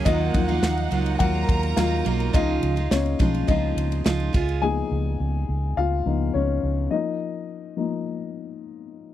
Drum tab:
RD |x-xxxxxxx-xxx-xx|x-xxxxxxx-xxxxxx|----------------|----------------|
HH |p---------------|----------------|----------------|----------------|
SD |----o-------o---|----o-------o---|----------------|----------------|
BD |o-o-----o-o-----|o-----o-o-----o-|----------------|----------------|